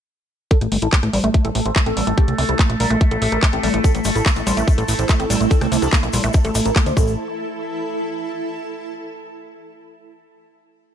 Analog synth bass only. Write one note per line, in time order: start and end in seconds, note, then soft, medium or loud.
0.61 0.67 A1 medium
0.72 0.78 G1 loud
0.82 0.88 A1 medium
1.03 1.09 A1 medium
1.13 1.19 A1 loud
1.24 1.30 A1 medium
1.45 1.50 A1 medium
1.55 1.61 A1 loud
1.66 1.71 A1 medium
1.86 1.92 A1 medium
1.97 2.03 A1 loud
2.07 2.13 A1 medium
2.28 2.34 C2 medium
2.38 2.44 C2 loud
2.49 2.55 C2 medium
2.70 2.75 A#1 medium
2.80 2.86 A#1 loud
2.91 2.96 A#1 medium
3.11 3.17 A1 medium
3.22 3.28 A1 loud
3.32 3.38 A1 medium
3.53 3.59 A1 medium
3.63 3.69 A1 loud
3.74 3.80 A1 medium
3.95 4.00 A1 medium
4.05 4.11 G1 loud
4.16 4.21 A1 medium
4.36 4.42 A1 medium
4.47 4.53 A1 loud
4.57 4.63 A1 medium
4.78 4.84 A1 medium
4.88 4.94 A1 loud
4.99 5.05 A1 medium
5.20 5.25 A1 medium
5.30 5.36 A1 loud
5.41 5.46 A1 medium
5.61 5.67 C2 medium
5.72 5.78 C2 loud
5.82 5.88 C2 medium
6.03 6.09 A#1 medium
6.13 6.19 A#1 loud
6.24 6.30 A#1 medium
6.45 6.50 A1 medium
6.55 6.61 A1 medium
6.65 6.71 A1 medium
6.86 6.92 D2 medium
6.97 7.16 A1 loud